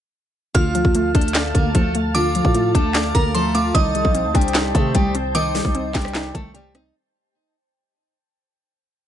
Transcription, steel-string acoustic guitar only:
0.54 1.11 F3 medium
0.54 1.11 F4 medium
1.15 1.53 A3 medium
1.15 1.52 A4 medium
1.55 1.74 A#3 medium
1.55 1.74 A#4 medium
1.75 1.94 A3 medium
1.75 1.94 A4 medium
2.15 2.72 F3 medium
2.15 2.71 F4 loud
2.75 3.13 A3 medium
2.75 3.12 A4 medium
3.15 3.34 A#3 medium
3.15 3.34 A#4 medium
3.35 3.54 A3 medium
3.35 3.54 A4 medium
3.55 3.74 F3 medium
3.55 3.74 F4 medium
3.75 4.31 D#4 loud
3.75 4.32 D#5 medium
4.35 4.73 G3 medium
4.35 4.73 G4 medium
4.75 4.94 A3 medium
4.75 4.94 A4 medium
4.95 5.14 G3 medium
4.95 5.14 G4 medium
5.35 5.91 D#4 loud
5.35 5.92 D#5 medium
5.95 6.33 G3 medium
5.95 6.32 G4 medium
6.35 6.54 A3 medium
6.35 6.54 A4 medium
6.54 6.74 G3 medium
6.54 6.73 G4 medium
6.75 6.94 D#4 medium
6.75 6.94 D#5 medium

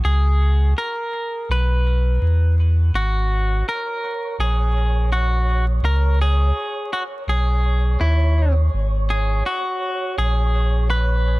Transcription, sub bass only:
0.04 0.74 C#2 loud
1.49 2.18 B1 medium
2.21 2.91 E2 medium
2.93 3.63 G#1 loud
4.38 5.80 A#1 medium
5.82 6.52 C#2 loud
7.27 7.97 B1 medium
8.00 8.69 D#2 medium
8.73 9.42 G#1 loud
10.18 11.40 A#1 medium

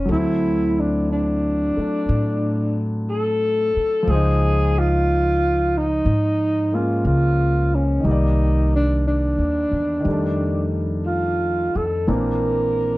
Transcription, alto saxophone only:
0.00 0.11 C#4 medium
0.11 0.81 E4 medium
0.80 1.10 D4 medium
1.12 2.89 D4 medium
3.10 4.11 A4 medium
4.10 4.80 G#4 medium
4.79 5.79 F4 medium
5.77 6.76 D#4 medium
6.75 7.06 F4 medium
7.06 7.76 F4 medium
7.75 8.07 C#4 medium
8.06 8.74 D#4 medium
8.76 9.04 D4 medium
9.07 10.86 D4 medium
11.06 11.78 F4 medium
11.77 12.10 A4 medium
12.08 12.98 A#4 medium

